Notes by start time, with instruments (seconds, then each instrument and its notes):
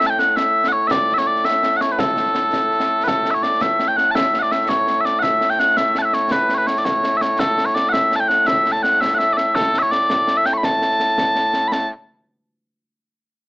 Already playing: bagpipes A2 A3
0.01 snare
0.07 bagpipes G5 A5
0.19 bagpipes F#5, snare
0.30 bagpipes F#5
0.36 bagpipes E5, snare
0.64 snare
0.68 bagpipes F#5
0.72 bagpipes C#5
0.87 bagpipes D5 E5, concert bass drum, snare
1.09 snare
1.14 bagpipes E5, snare
1.18 bagpipes C#5
1.27 bagpipes D5
1.36 snare
1.45 bagpipes E5, snare
1.63 snare
1.72 snare
1.77 bagpipes F#5
1.81 bagpipes C#5, snare
1.90 bagpipes B4, snare
1.99 bagpipes A4, concert bass drum, snare
2.08 snare
2.17 snare
2.26 snare
2.35 snare
2.53 concert bass drum, snare
2.71 snare
2.80 snare
3.04 bagpipes A4 B4, concert bass drum, snare
3.25 snare
3.31 bagpipes C#5 E5, snare
3.43 bagpipes D5, snare
3.52 snare
3.61 bagpipes E5, concert bass drum, snare
3.79 snare
3.88 bagpipes G5
3.97 bagpipes F#5, snare
4.11 bagpipes A5
4.15 bagpipes E5, concert bass drum, snare
4.34 snare
4.39 bagpipes D5 F#5, snare
4.51 bagpipes E5, snare
4.61 snare
4.69 bagpipes C#5, concert bass drum, snare
4.87 snare
5.01 bagpipes E5
5.05 bagpipes D5, snare
5.19 bagpipes E5 F#5
5.24 concert bass drum, snare
5.41 snare
5.50 bagpipes G5, snare
5.59 bagpipes F#5, snare
5.77 bagpipes E5, concert bass drum, snare
5.95 bagpipes A5, snare
6.02 bagpipes E5 F#5
6.13 bagpipes C#5, snare
6.31 bagpipes B4, concert bass drum, snare
6.49 snare
6.55 bagpipes B4 C#5, snare
6.67 bagpipes C#5, snare
6.76 bagpipes D5, snare
6.85 bagpipes C#5, concert bass drum, snare
7.04 snare
7.17 bagpipes E5
7.21 bagpipes C#5, snare
7.39 bagpipes A4, concert bass drum, snare
7.58 snare
7.66 bagpipes C#5, snare
7.75 bagpipes D5, snare
7.85 snare
7.89 bagpipes E5 F#5
7.94 concert bass drum, snare
8.12 snare
8.16 bagpipes A5
8.20 bagpipes G5
8.28 bagpipes F#5, snare
8.47 bagpipes E5, concert bass drum, snare
8.66 snare
8.72 bagpipes A5, snare
8.83 bagpipes F#5, snare
8.93 snare
9.01 bagpipes E5, concert bass drum, snare
9.15 bagpipes E5 F#5
9.19 snare
9.33 bagpipes D5
9.37 bagpipes E5, snare
9.55 bagpipes A4, concert bass drum, snare
9.74 snare
9.79 bagpipes C#5 E5
9.83 snare
9.91 bagpipes D5, snare
10.10 concert bass drum, snare
10.28 snare
10.37 bagpipes E5
10.46 bagpipes G5, snare
10.53 bagpipes C#6
10.58 bagpipes B5
10.63 bagpipes A5, concert bass drum, snare
10.82 snare
10.91 snare
11.00 snare
11.09 snare
11.18 concert bass drum, snare
11.36 snare
11.54 snare
11.68 bagpipes B5, snare
11.72 bagpipes A5